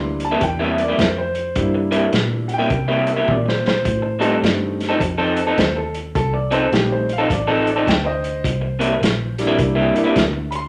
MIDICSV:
0, 0, Header, 1, 6, 480
1, 0, Start_track
1, 0, Tempo, 573614
1, 1306, Time_signature, 4, 2, 24, 8
1, 8940, End_track
2, 0, Start_track
2, 0, Title_t, "Grand piano"
2, 0, Program_c, 0, 0
2, 0, Note_on_c, 0, 55, 63
2, 0, Note_on_c, 0, 58, 62
2, 0, Note_on_c, 0, 62, 59
2, 0, Note_on_c, 0, 64, 66
2, 0, Note_on_c, 0, 84, 91
2, 184, Note_off_c, 0, 84, 0
2, 206, Note_on_c, 0, 81, 78
2, 352, Note_off_c, 0, 81, 0
2, 360, Note_on_c, 0, 79, 84
2, 509, Note_off_c, 0, 79, 0
2, 515, Note_on_c, 0, 76, 81
2, 666, Note_off_c, 0, 76, 0
2, 671, Note_on_c, 0, 74, 83
2, 724, Note_off_c, 0, 55, 0
2, 724, Note_off_c, 0, 58, 0
2, 727, Note_off_c, 0, 64, 0
2, 728, Note_off_c, 0, 62, 0
2, 824, Note_off_c, 0, 74, 0
2, 826, Note_on_c, 0, 72, 66
2, 978, Note_off_c, 0, 72, 0
2, 991, Note_on_c, 0, 72, 84
2, 1300, Note_on_c, 0, 55, 63
2, 1301, Note_on_c, 0, 58, 54
2, 1309, Note_on_c, 0, 62, 53
2, 1310, Note_on_c, 0, 64, 72
2, 1454, Note_off_c, 0, 72, 0
2, 2075, Note_on_c, 0, 78, 64
2, 2115, Note_off_c, 0, 78, 0
2, 2122, Note_on_c, 0, 79, 97
2, 2579, Note_off_c, 0, 79, 0
2, 2592, Note_on_c, 0, 76, 70
2, 2636, Note_off_c, 0, 55, 0
2, 2636, Note_off_c, 0, 58, 0
2, 2640, Note_off_c, 0, 62, 0
2, 2641, Note_off_c, 0, 64, 0
2, 2744, Note_off_c, 0, 76, 0
2, 2760, Note_on_c, 0, 74, 72
2, 2907, Note_off_c, 0, 74, 0
2, 2918, Note_on_c, 0, 72, 82
2, 3063, Note_off_c, 0, 72, 0
2, 3075, Note_on_c, 0, 72, 91
2, 3521, Note_on_c, 0, 55, 75
2, 3526, Note_on_c, 0, 57, 63
2, 3528, Note_on_c, 0, 60, 65
2, 3532, Note_on_c, 0, 63, 74
2, 3535, Note_off_c, 0, 72, 0
2, 4145, Note_off_c, 0, 55, 0
2, 4148, Note_off_c, 0, 57, 0
2, 4149, Note_off_c, 0, 60, 0
2, 4151, Note_off_c, 0, 63, 0
2, 4677, Note_on_c, 0, 72, 79
2, 4826, Note_off_c, 0, 72, 0
2, 4835, Note_on_c, 0, 69, 85
2, 4985, Note_off_c, 0, 69, 0
2, 5151, Note_on_c, 0, 69, 97
2, 5298, Note_on_c, 0, 74, 70
2, 5303, Note_off_c, 0, 69, 0
2, 5456, Note_off_c, 0, 74, 0
2, 5471, Note_on_c, 0, 72, 86
2, 5623, Note_off_c, 0, 72, 0
2, 5627, Note_on_c, 0, 55, 62
2, 5631, Note_on_c, 0, 67, 82
2, 5636, Note_on_c, 0, 57, 52
2, 5636, Note_on_c, 0, 60, 56
2, 5643, Note_on_c, 0, 63, 65
2, 5783, Note_off_c, 0, 67, 0
2, 5794, Note_on_c, 0, 72, 74
2, 5899, Note_off_c, 0, 55, 0
2, 5903, Note_off_c, 0, 57, 0
2, 5903, Note_off_c, 0, 60, 0
2, 5906, Note_off_c, 0, 63, 0
2, 5944, Note_off_c, 0, 72, 0
2, 5965, Note_on_c, 0, 77, 78
2, 6110, Note_off_c, 0, 77, 0
2, 6123, Note_on_c, 0, 74, 80
2, 6269, Note_off_c, 0, 74, 0
2, 6288, Note_on_c, 0, 69, 75
2, 6432, Note_off_c, 0, 69, 0
2, 6443, Note_on_c, 0, 74, 72
2, 6589, Note_off_c, 0, 74, 0
2, 6596, Note_on_c, 0, 79, 84
2, 6741, Note_on_c, 0, 72, 83
2, 6746, Note_off_c, 0, 79, 0
2, 6747, Note_on_c, 0, 75, 98
2, 7056, Note_off_c, 0, 75, 0
2, 7853, Note_on_c, 0, 55, 77
2, 7857, Note_on_c, 0, 58, 69
2, 7859, Note_on_c, 0, 62, 68
2, 7862, Note_on_c, 0, 64, 82
2, 8150, Note_off_c, 0, 72, 0
2, 8301, Note_off_c, 0, 55, 0
2, 8303, Note_off_c, 0, 58, 0
2, 8304, Note_off_c, 0, 62, 0
2, 8306, Note_off_c, 0, 64, 0
2, 8329, Note_on_c, 0, 55, 65
2, 8333, Note_on_c, 0, 58, 64
2, 8335, Note_on_c, 0, 62, 66
2, 8336, Note_on_c, 0, 64, 81
2, 8488, Note_off_c, 0, 55, 0
2, 8490, Note_off_c, 0, 58, 0
2, 8492, Note_off_c, 0, 62, 0
2, 8492, Note_off_c, 0, 64, 0
2, 8792, Note_on_c, 0, 83, 69
2, 8833, Note_off_c, 0, 83, 0
2, 8833, Note_on_c, 0, 84, 98
2, 8940, Note_off_c, 0, 84, 0
2, 8940, End_track
3, 0, Start_track
3, 0, Title_t, "Clean electric guitar"
3, 0, Program_c, 1, 27
3, 262, Note_on_c, 1, 64, 88
3, 268, Note_on_c, 1, 58, 75
3, 269, Note_on_c, 1, 55, 72
3, 271, Note_on_c, 1, 48, 59
3, 336, Note_off_c, 1, 48, 0
3, 345, Note_off_c, 1, 55, 0
3, 346, Note_off_c, 1, 58, 0
3, 349, Note_off_c, 1, 64, 0
3, 497, Note_on_c, 1, 64, 95
3, 504, Note_on_c, 1, 58, 79
3, 505, Note_on_c, 1, 55, 76
3, 511, Note_on_c, 1, 48, 69
3, 676, Note_off_c, 1, 64, 0
3, 679, Note_off_c, 1, 58, 0
3, 680, Note_off_c, 1, 55, 0
3, 683, Note_off_c, 1, 48, 0
3, 739, Note_on_c, 1, 64, 75
3, 746, Note_on_c, 1, 58, 73
3, 750, Note_on_c, 1, 55, 63
3, 754, Note_on_c, 1, 48, 62
3, 873, Note_off_c, 1, 64, 0
3, 876, Note_off_c, 1, 58, 0
3, 878, Note_off_c, 1, 55, 0
3, 880, Note_off_c, 1, 48, 0
3, 1599, Note_on_c, 1, 48, 75
3, 1603, Note_on_c, 1, 58, 80
3, 1604, Note_on_c, 1, 55, 80
3, 1607, Note_on_c, 1, 64, 84
3, 1719, Note_off_c, 1, 48, 0
3, 1721, Note_off_c, 1, 55, 0
3, 1721, Note_off_c, 1, 58, 0
3, 1723, Note_off_c, 1, 64, 0
3, 2162, Note_on_c, 1, 64, 75
3, 2168, Note_on_c, 1, 58, 73
3, 2171, Note_on_c, 1, 55, 76
3, 2176, Note_on_c, 1, 48, 66
3, 2253, Note_off_c, 1, 48, 0
3, 2257, Note_off_c, 1, 55, 0
3, 2258, Note_off_c, 1, 58, 0
3, 2258, Note_off_c, 1, 64, 0
3, 2410, Note_on_c, 1, 64, 87
3, 2413, Note_on_c, 1, 58, 86
3, 2416, Note_on_c, 1, 55, 82
3, 2422, Note_on_c, 1, 48, 62
3, 2591, Note_off_c, 1, 64, 0
3, 2593, Note_off_c, 1, 58, 0
3, 2594, Note_off_c, 1, 55, 0
3, 2597, Note_off_c, 1, 48, 0
3, 2648, Note_on_c, 1, 64, 77
3, 2649, Note_on_c, 1, 58, 74
3, 2652, Note_on_c, 1, 55, 68
3, 2660, Note_on_c, 1, 48, 68
3, 2786, Note_off_c, 1, 64, 0
3, 2787, Note_off_c, 1, 58, 0
3, 2788, Note_off_c, 1, 55, 0
3, 2792, Note_off_c, 1, 48, 0
3, 3507, Note_on_c, 1, 53, 76
3, 3514, Note_on_c, 1, 60, 84
3, 3518, Note_on_c, 1, 63, 95
3, 3522, Note_on_c, 1, 69, 91
3, 3632, Note_off_c, 1, 53, 0
3, 3636, Note_off_c, 1, 60, 0
3, 3637, Note_off_c, 1, 63, 0
3, 3640, Note_off_c, 1, 69, 0
3, 4089, Note_on_c, 1, 69, 71
3, 4095, Note_on_c, 1, 63, 73
3, 4102, Note_on_c, 1, 60, 75
3, 4105, Note_on_c, 1, 53, 66
3, 4177, Note_off_c, 1, 53, 0
3, 4178, Note_off_c, 1, 60, 0
3, 4181, Note_off_c, 1, 69, 0
3, 4184, Note_off_c, 1, 63, 0
3, 4334, Note_on_c, 1, 63, 72
3, 4334, Note_on_c, 1, 69, 89
3, 4339, Note_on_c, 1, 60, 80
3, 4341, Note_on_c, 1, 53, 76
3, 4513, Note_off_c, 1, 63, 0
3, 4513, Note_off_c, 1, 69, 0
3, 4515, Note_off_c, 1, 60, 0
3, 4516, Note_off_c, 1, 53, 0
3, 4577, Note_on_c, 1, 69, 80
3, 4579, Note_on_c, 1, 63, 75
3, 4588, Note_on_c, 1, 53, 61
3, 4588, Note_on_c, 1, 60, 71
3, 4710, Note_off_c, 1, 69, 0
3, 4711, Note_off_c, 1, 63, 0
3, 4715, Note_off_c, 1, 53, 0
3, 4716, Note_off_c, 1, 60, 0
3, 5447, Note_on_c, 1, 53, 78
3, 5451, Note_on_c, 1, 60, 90
3, 5453, Note_on_c, 1, 63, 82
3, 5458, Note_on_c, 1, 69, 88
3, 5562, Note_off_c, 1, 53, 0
3, 5564, Note_off_c, 1, 60, 0
3, 5565, Note_off_c, 1, 63, 0
3, 5567, Note_off_c, 1, 69, 0
3, 6010, Note_on_c, 1, 69, 84
3, 6013, Note_on_c, 1, 63, 75
3, 6018, Note_on_c, 1, 60, 68
3, 6021, Note_on_c, 1, 53, 64
3, 6088, Note_off_c, 1, 53, 0
3, 6093, Note_off_c, 1, 60, 0
3, 6095, Note_off_c, 1, 63, 0
3, 6096, Note_off_c, 1, 69, 0
3, 6255, Note_on_c, 1, 69, 96
3, 6256, Note_on_c, 1, 63, 82
3, 6261, Note_on_c, 1, 60, 80
3, 6263, Note_on_c, 1, 53, 76
3, 6433, Note_off_c, 1, 69, 0
3, 6434, Note_off_c, 1, 63, 0
3, 6436, Note_off_c, 1, 60, 0
3, 6438, Note_off_c, 1, 53, 0
3, 6494, Note_on_c, 1, 69, 77
3, 6496, Note_on_c, 1, 63, 75
3, 6502, Note_on_c, 1, 53, 63
3, 6502, Note_on_c, 1, 60, 62
3, 6629, Note_off_c, 1, 69, 0
3, 6630, Note_off_c, 1, 63, 0
3, 6633, Note_off_c, 1, 53, 0
3, 6633, Note_off_c, 1, 60, 0
3, 7357, Note_on_c, 1, 48, 80
3, 7363, Note_on_c, 1, 58, 90
3, 7366, Note_on_c, 1, 55, 81
3, 7369, Note_on_c, 1, 64, 91
3, 7478, Note_off_c, 1, 48, 0
3, 7481, Note_off_c, 1, 58, 0
3, 7482, Note_off_c, 1, 55, 0
3, 7483, Note_off_c, 1, 64, 0
3, 7925, Note_on_c, 1, 64, 87
3, 7928, Note_on_c, 1, 58, 81
3, 7931, Note_on_c, 1, 55, 81
3, 7934, Note_on_c, 1, 48, 67
3, 8008, Note_off_c, 1, 48, 0
3, 8010, Note_off_c, 1, 55, 0
3, 8012, Note_off_c, 1, 58, 0
3, 8012, Note_off_c, 1, 64, 0
3, 8161, Note_on_c, 1, 64, 88
3, 8164, Note_on_c, 1, 58, 84
3, 8169, Note_on_c, 1, 48, 70
3, 8169, Note_on_c, 1, 55, 76
3, 8347, Note_off_c, 1, 64, 0
3, 8349, Note_off_c, 1, 58, 0
3, 8351, Note_off_c, 1, 48, 0
3, 8352, Note_off_c, 1, 55, 0
3, 8401, Note_on_c, 1, 64, 82
3, 8405, Note_on_c, 1, 58, 76
3, 8408, Note_on_c, 1, 55, 74
3, 8410, Note_on_c, 1, 48, 64
3, 8543, Note_off_c, 1, 64, 0
3, 8546, Note_off_c, 1, 58, 0
3, 8547, Note_off_c, 1, 48, 0
3, 8547, Note_off_c, 1, 55, 0
3, 8940, End_track
4, 0, Start_track
4, 0, Title_t, "Fingered electric bass"
4, 0, Program_c, 2, 33
4, 0, Note_on_c, 2, 38, 82
4, 330, Note_off_c, 2, 38, 0
4, 342, Note_on_c, 2, 40, 85
4, 810, Note_off_c, 2, 40, 0
4, 820, Note_on_c, 2, 41, 84
4, 1288, Note_off_c, 2, 41, 0
4, 1308, Note_on_c, 2, 43, 81
4, 1772, Note_off_c, 2, 43, 0
4, 1782, Note_on_c, 2, 46, 93
4, 2249, Note_off_c, 2, 46, 0
4, 2261, Note_on_c, 2, 48, 81
4, 2728, Note_off_c, 2, 48, 0
4, 2742, Note_on_c, 2, 46, 85
4, 3209, Note_off_c, 2, 46, 0
4, 3221, Note_on_c, 2, 45, 85
4, 3688, Note_off_c, 2, 45, 0
4, 3702, Note_on_c, 2, 43, 84
4, 4169, Note_off_c, 2, 43, 0
4, 4183, Note_on_c, 2, 41, 82
4, 4649, Note_off_c, 2, 41, 0
4, 4670, Note_on_c, 2, 39, 80
4, 5133, Note_off_c, 2, 39, 0
4, 5147, Note_on_c, 2, 36, 80
4, 5611, Note_off_c, 2, 36, 0
4, 5622, Note_on_c, 2, 34, 82
4, 6089, Note_off_c, 2, 34, 0
4, 6111, Note_on_c, 2, 33, 75
4, 6573, Note_off_c, 2, 33, 0
4, 6590, Note_on_c, 2, 38, 85
4, 7053, Note_off_c, 2, 38, 0
4, 7064, Note_on_c, 2, 36, 81
4, 7530, Note_off_c, 2, 36, 0
4, 7542, Note_on_c, 2, 34, 87
4, 8010, Note_off_c, 2, 34, 0
4, 8024, Note_on_c, 2, 36, 88
4, 8307, Note_off_c, 2, 36, 0
4, 8503, Note_on_c, 2, 38, 88
4, 8940, Note_off_c, 2, 38, 0
4, 8940, End_track
5, 0, Start_track
5, 0, Title_t, "Muted clean electric guitar strokes"
5, 346, Note_on_c, 9, 29, 47
5, 430, Note_off_c, 9, 29, 0
5, 978, Note_on_c, 9, 29, 48
5, 1062, Note_off_c, 9, 29, 0
5, 1460, Note_on_c, 9, 29, 45
5, 1543, Note_off_c, 9, 29, 0
5, 1782, Note_on_c, 9, 29, 39
5, 1866, Note_off_c, 9, 29, 0
5, 2263, Note_on_c, 9, 29, 45
5, 2347, Note_off_c, 9, 29, 0
5, 2893, Note_on_c, 9, 29, 49
5, 2976, Note_off_c, 9, 29, 0
5, 3367, Note_on_c, 9, 29, 46
5, 3450, Note_off_c, 9, 29, 0
5, 3695, Note_on_c, 9, 29, 46
5, 3779, Note_off_c, 9, 29, 0
5, 4187, Note_on_c, 9, 29, 46
5, 4270, Note_off_c, 9, 29, 0
5, 4821, Note_on_c, 9, 29, 50
5, 4905, Note_off_c, 9, 29, 0
5, 5303, Note_on_c, 9, 29, 43
5, 5387, Note_off_c, 9, 29, 0
5, 5634, Note_on_c, 9, 29, 44
5, 5717, Note_off_c, 9, 29, 0
5, 6098, Note_on_c, 9, 29, 46
5, 6182, Note_off_c, 9, 29, 0
5, 6729, Note_on_c, 9, 29, 47
5, 6813, Note_off_c, 9, 29, 0
5, 7209, Note_on_c, 9, 29, 49
5, 7293, Note_off_c, 9, 29, 0
5, 7538, Note_on_c, 9, 29, 43
5, 7621, Note_off_c, 9, 29, 0
5, 8018, Note_on_c, 9, 29, 47
5, 8102, Note_off_c, 9, 29, 0
5, 8645, Note_on_c, 9, 29, 52
5, 8729, Note_off_c, 9, 29, 0
5, 8940, End_track
6, 0, Start_track
6, 0, Title_t, "Drums"
6, 167, Note_on_c, 9, 42, 56
6, 250, Note_off_c, 9, 42, 0
6, 343, Note_on_c, 9, 42, 69
6, 346, Note_on_c, 9, 36, 99
6, 426, Note_off_c, 9, 42, 0
6, 429, Note_off_c, 9, 36, 0
6, 655, Note_on_c, 9, 42, 56
6, 738, Note_off_c, 9, 42, 0
6, 825, Note_on_c, 9, 36, 74
6, 827, Note_on_c, 9, 42, 76
6, 837, Note_on_c, 9, 38, 101
6, 909, Note_off_c, 9, 36, 0
6, 910, Note_off_c, 9, 42, 0
6, 920, Note_off_c, 9, 38, 0
6, 1129, Note_on_c, 9, 42, 53
6, 1212, Note_off_c, 9, 42, 0
6, 1301, Note_on_c, 9, 42, 74
6, 1305, Note_on_c, 9, 36, 110
6, 1385, Note_off_c, 9, 42, 0
6, 1388, Note_off_c, 9, 36, 0
6, 1609, Note_on_c, 9, 42, 58
6, 1692, Note_off_c, 9, 42, 0
6, 1779, Note_on_c, 9, 42, 71
6, 1789, Note_on_c, 9, 38, 97
6, 1863, Note_off_c, 9, 42, 0
6, 1873, Note_off_c, 9, 38, 0
6, 2082, Note_on_c, 9, 42, 53
6, 2166, Note_off_c, 9, 42, 0
6, 2261, Note_on_c, 9, 42, 74
6, 2263, Note_on_c, 9, 36, 106
6, 2345, Note_off_c, 9, 42, 0
6, 2346, Note_off_c, 9, 36, 0
6, 2567, Note_on_c, 9, 42, 61
6, 2651, Note_off_c, 9, 42, 0
6, 2744, Note_on_c, 9, 36, 76
6, 2744, Note_on_c, 9, 48, 59
6, 2828, Note_off_c, 9, 36, 0
6, 2828, Note_off_c, 9, 48, 0
6, 2915, Note_on_c, 9, 38, 66
6, 2999, Note_off_c, 9, 38, 0
6, 3076, Note_on_c, 9, 38, 90
6, 3160, Note_off_c, 9, 38, 0
6, 3224, Note_on_c, 9, 36, 107
6, 3224, Note_on_c, 9, 42, 84
6, 3308, Note_off_c, 9, 36, 0
6, 3308, Note_off_c, 9, 42, 0
6, 3529, Note_on_c, 9, 42, 58
6, 3613, Note_off_c, 9, 42, 0
6, 3712, Note_on_c, 9, 42, 76
6, 3722, Note_on_c, 9, 38, 103
6, 3795, Note_off_c, 9, 42, 0
6, 3805, Note_off_c, 9, 38, 0
6, 4020, Note_on_c, 9, 42, 59
6, 4030, Note_on_c, 9, 38, 31
6, 4104, Note_off_c, 9, 42, 0
6, 4114, Note_off_c, 9, 38, 0
6, 4187, Note_on_c, 9, 36, 98
6, 4191, Note_on_c, 9, 42, 80
6, 4271, Note_off_c, 9, 36, 0
6, 4275, Note_off_c, 9, 42, 0
6, 4490, Note_on_c, 9, 42, 59
6, 4574, Note_off_c, 9, 42, 0
6, 4667, Note_on_c, 9, 36, 75
6, 4667, Note_on_c, 9, 42, 71
6, 4677, Note_on_c, 9, 38, 104
6, 4750, Note_off_c, 9, 42, 0
6, 4751, Note_off_c, 9, 36, 0
6, 4760, Note_off_c, 9, 38, 0
6, 4974, Note_on_c, 9, 42, 57
6, 5058, Note_off_c, 9, 42, 0
6, 5149, Note_on_c, 9, 36, 102
6, 5149, Note_on_c, 9, 42, 74
6, 5233, Note_off_c, 9, 36, 0
6, 5233, Note_off_c, 9, 42, 0
6, 5454, Note_on_c, 9, 42, 60
6, 5538, Note_off_c, 9, 42, 0
6, 5628, Note_on_c, 9, 42, 71
6, 5638, Note_on_c, 9, 38, 96
6, 5712, Note_off_c, 9, 42, 0
6, 5722, Note_off_c, 9, 38, 0
6, 5935, Note_on_c, 9, 42, 58
6, 6019, Note_off_c, 9, 42, 0
6, 6109, Note_on_c, 9, 36, 111
6, 6114, Note_on_c, 9, 42, 74
6, 6193, Note_off_c, 9, 36, 0
6, 6197, Note_off_c, 9, 42, 0
6, 6419, Note_on_c, 9, 42, 55
6, 6502, Note_off_c, 9, 42, 0
6, 6588, Note_on_c, 9, 36, 76
6, 6594, Note_on_c, 9, 42, 79
6, 6604, Note_on_c, 9, 38, 106
6, 6672, Note_off_c, 9, 36, 0
6, 6678, Note_off_c, 9, 42, 0
6, 6688, Note_off_c, 9, 38, 0
6, 6896, Note_on_c, 9, 42, 61
6, 6980, Note_off_c, 9, 42, 0
6, 7065, Note_on_c, 9, 36, 109
6, 7071, Note_on_c, 9, 42, 90
6, 7149, Note_off_c, 9, 36, 0
6, 7155, Note_off_c, 9, 42, 0
6, 7373, Note_on_c, 9, 42, 60
6, 7456, Note_off_c, 9, 42, 0
6, 7555, Note_on_c, 9, 42, 88
6, 7565, Note_on_c, 9, 38, 97
6, 7639, Note_off_c, 9, 42, 0
6, 7649, Note_off_c, 9, 38, 0
6, 7853, Note_on_c, 9, 42, 60
6, 7863, Note_on_c, 9, 38, 30
6, 7937, Note_off_c, 9, 42, 0
6, 7947, Note_off_c, 9, 38, 0
6, 8021, Note_on_c, 9, 36, 106
6, 8022, Note_on_c, 9, 42, 82
6, 8105, Note_off_c, 9, 36, 0
6, 8106, Note_off_c, 9, 42, 0
6, 8332, Note_on_c, 9, 42, 59
6, 8416, Note_off_c, 9, 42, 0
6, 8500, Note_on_c, 9, 42, 83
6, 8502, Note_on_c, 9, 36, 76
6, 8510, Note_on_c, 9, 38, 104
6, 8584, Note_off_c, 9, 42, 0
6, 8586, Note_off_c, 9, 36, 0
6, 8594, Note_off_c, 9, 38, 0
6, 8803, Note_on_c, 9, 42, 61
6, 8886, Note_off_c, 9, 42, 0
6, 8940, End_track
0, 0, End_of_file